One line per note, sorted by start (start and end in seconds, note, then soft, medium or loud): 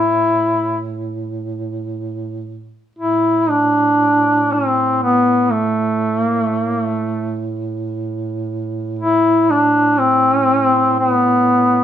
0.00 2.78 A2 soft
0.00 0.82 E4 medium
2.95 11.84 A2 soft
2.95 3.51 E4 medium
3.50 4.54 D4 medium
4.53 5.02 C4 medium
5.03 5.53 B3 medium
5.52 6.23 A3 medium
6.23 6.42 A#3 medium
6.42 6.63 A3 medium
6.63 6.82 A#3 medium
6.82 7.52 A3 medium
8.99 9.52 E4 medium
9.50 10.00 D4 medium
9.99 10.98 C4 medium
10.99 11.84 B3 medium